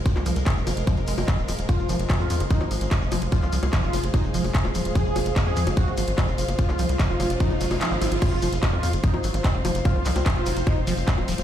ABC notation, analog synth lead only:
X:1
M:4/4
L:1/16
Q:1/4=147
K:Fphr
V:1 name="Analog synth lead"
z16 | F2 z3 F2 z E z6 z | F2 z3 F2 z E z6 z | A2 z3 A2 z G z6 z |
F2 z3 F2 z E z6 z | F2 z3 F2 z E z6 z | F2 z3 F2 z E z6 z |]